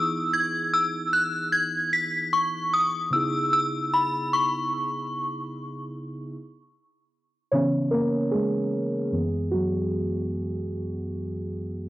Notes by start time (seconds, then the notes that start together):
Already playing: E3 B3 D#4 E4 G#4 E6
0.33 G#6
0.74 E6
1.13 F#6
1.53 G#6
1.93 B6
2.33 C#6
2.74 D#6
3.10 C#3 B3 D#4 E4 E6
3.16 G#4
3.53 E6
3.94 B5
4.33 C#6
7.51 C#3 E3 B3 C#4 C#5
7.91 A#3 A#4
8.31 G#3 G#4
9.12 F#2 E3 B3
9.51 F#3 F#4